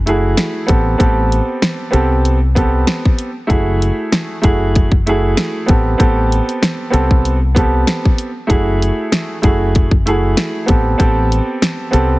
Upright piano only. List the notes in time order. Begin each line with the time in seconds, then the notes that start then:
0.06 A3 E4 F#4 G#4
0.67 B3 C4 G4 A4
0.98 B3 C4 G4 A4
1.90 B3 C4 G4 A4
2.55 B3 C4 G4 A4
3.47 A3 E4 F#4 G#4
4.42 A3 E4 F#4 G#4
5.06 A3 E4 F#4 G#4
5.66 B3 C4 G4 A4
5.98 B3 C4 G4 A4
6.90 B3 C4 G4 A4
7.55 B3 C4 G4 A4
8.47 A3 E4 F#4 G#4
9.42 A3 E4 F#4 G#4
10.06 A3 E4 F#4 G#4
10.66 B3 C4 G4 A4
10.98 B3 C4 G4 A4
11.91 B3 C4 G4 A4